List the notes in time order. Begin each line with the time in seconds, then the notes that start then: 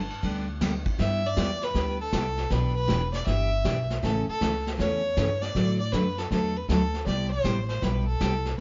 Already playing: A5
0.10 ride
0.23 D2 D3 G3 B3 D4 G4, kick, ride
0.61 D3 G3 B3 D4 G4, kick, snare, hi-hat pedal, ride
0.86 kick, ride
0.98 G2 G3 B3 E4 G4 E5, brush sweep, kick, snare
1.26 D5
1.37 E2 G3 B3 E4 G4, kick, snare, hi-hat pedal
1.61 B4, snare
1.74 D2 G3 B3 E4 G4, brush sweep, kick, snare
2.01 A4
2.13 C2 G3 B3 E4 G4, kick, snare, hi-hat pedal
2.37 snare
2.50 B1 E3 B3 D4 G4 B4, brush sweep, kick, snare
2.76 B4
2.88 E1 E3 B3 D4 G4, kick, snare, hi-hat pedal
3.13 D5, snare
3.26 G1 E3 B3 D4 G4 E5, brush sweep, kick, snare
3.64 B1 E3 B3 D4 G4, kick, snare, hi-hat pedal
3.90 snare
4.02 A1 C#3 E3 A3 C#4 A4, brush sweep, kick, snare
4.28 A4, muted upright bass stroke
4.41 C#2 C#3 E3 A3 C#4 A4, kick, snare, hi-hat pedal
4.67 snare
4.78 E2 C#3 E3 A3 C#4 A4 C#5, brush sweep, kick, snare
5.17 G2 C#3 E3 A3 C#4 A4, kick, snare, hi-hat pedal
5.41 D5, snare
5.55 A2 D3 F#3 A3 D4 F#4, brush sweep, kick, snare
5.79 D5
5.92 F#2 D3 F#3 A3 D4 F#4 B4, kick, snare, hi-hat pedal
6.18 A4, snare
6.31 E2 D3 F#3 A3 D4 F#4 A4, brush sweep, kick, snare
6.57 B4
6.69 D2 D3 F#3 A3 D4 F#4 A4, kick, snare, hi-hat pedal
6.94 snare
7.07 C2 C3 G3 B3 E4 G4 D5, brush sweep, kick, snare
7.31 C5
7.44 A1 C3 G3 B3 E4 G4, kick, snare, hi-hat pedal
7.68 C5, snare
7.82 B1 C3 G3 B3 E4 G4 B4, brush sweep, kick, snare
8.07 A4
8.20 C2 C3 G3 B3 E4 G4, kick, snare, hi-hat pedal
8.45 snare